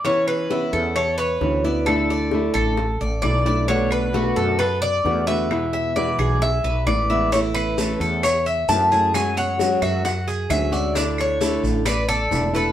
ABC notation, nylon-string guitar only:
X:1
M:4/4
L:1/8
Q:1/4=132
K:A
V:1 name="Nylon-string guitar"
[E,B,CE]2 [E,B,CE]2 z2 [E,B,CE] [B,CE] | [D,A,DE]2 [D,A,DE]2 z2 [D,A,DE] [A,DE] | [B,,D,A,B,F]2 [B,,D,A,B,F]2 z2 [D,A,B,F] [D,A,B,F] | [B,,E,G,B,E]2 [B,,E,G,B,E]2 z2 [E,G,B,E] [E,G,B,E] |
[E,A,CE]2 [E,A,CE]2 z2 [E,A,CE] [A,CE] | [F,G,CF]2 [F,G,CF]2 z2 [F,G,CF] [G,CF] | [D,A,DE]2 [D,A,DE]2 z2 [D,A,DE] [A,DE] |]